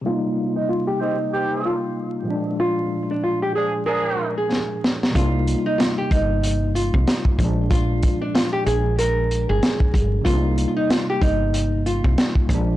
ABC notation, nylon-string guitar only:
X:1
M:4/4
L:1/16
Q:"Swing 16ths" 1/4=94
K:Cm
V:1 name="Nylon-string guitar"
F3 E F G E4 F6 | F3 D F G A2 B3 A4- A | F3 E F G E4 F6 | F3 D F G A2 B3 A4- A |
F3 E F G E4 F6 |]